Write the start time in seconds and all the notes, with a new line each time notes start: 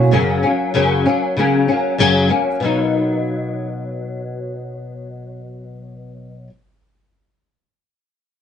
Already playing: B2 F#3 A#3 C#4 E4 F#4 C#5
0.11 F#2 C#3 F#3 A#3 C#4
0.43 F#3 A#3 C#4
0.74 F#2 C#3 F#3 A#3 C#4
1.06 F#3 A#3 C#4
1.37 C#3 F#3 A#3 C#4
1.68 F#3 A#3 C#4
1.98 F#2 C#3 F#3 A#3 C#4
2.30 F#3 A#3 C#4
2.60 B2 F#3
2.64 A#3 D#4